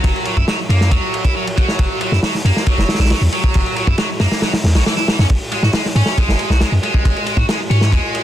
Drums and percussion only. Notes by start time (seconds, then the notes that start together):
0.04 kick, ride
0.16 ride
0.25 ride
0.37 kick
0.48 snare, ride
0.70 ride
0.81 snare
0.91 kick, ride
1.14 ride
1.25 kick, ride
1.47 ride
1.58 kick, ride
1.68 snare
1.79 kick, ride
2.01 ride
2.13 snare
2.23 snare, open hi-hat
2.35 snare
2.46 ride
2.57 snare
2.67 kick, ride
2.79 snare
2.89 snare, open hi-hat
2.94 snare, open hi-hat
3.00 snare, open hi-hat
3.05 snare, open hi-hat
3.10 snare, ride
3.32 ride
3.44 kick
3.54 kick, ride
3.66 ride
3.76 ride
3.87 kick
3.98 snare, ride
4.20 snare, open hi-hat
4.32 snare, open hi-hat
4.42 snare, open hi-hat
4.53 snare, open hi-hat
4.64 snare, open hi-hat
4.75 snare, open hi-hat
4.86 snare, open hi-hat
4.97 snare
5.08 snare, open hi-hat
5.19 snare
5.30 kick, ride
5.52 ride
5.63 snare
5.73 snare, open hi-hat
5.86 snare
5.96 ride
6.06 snare
6.18 kick, ride
6.29 snare
6.39 ride
6.50 snare
6.61 snare, ride
6.83 ride
6.94 kick
7.05 kick, ride
7.16 ride
7.26 ride
7.37 kick
7.49 snare, ride
7.71 ride
7.81 snare
7.92 kick, ride
8.15 ride